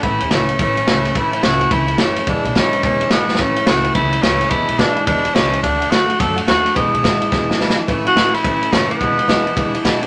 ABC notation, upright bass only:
X:1
M:4/4
L:1/8
Q:"Swing" 1/4=214
K:A
V:1 name="Upright bass" clef=bass
A,,, E,, C,,2 A,,,2 C,,2 | A,,,2 C,,2 C,,2 F,,,2 | E,,, B,,, G,,,2 E,,,2 G,,,2 | A,,,2 C,,2 C,,2 C,,2 |
E,,, B,,, G,,,2 E,,,2 C,,2 | D,,2 F,,2 F,,2 ^D,,2 | E,,, B,,, G,,,2 E,,,2 G,,,2 | A,,,2 A,,,2 A,,,2 F,,,2 |
E,,,2 E,,,2 E,,,2 G,,,2 |]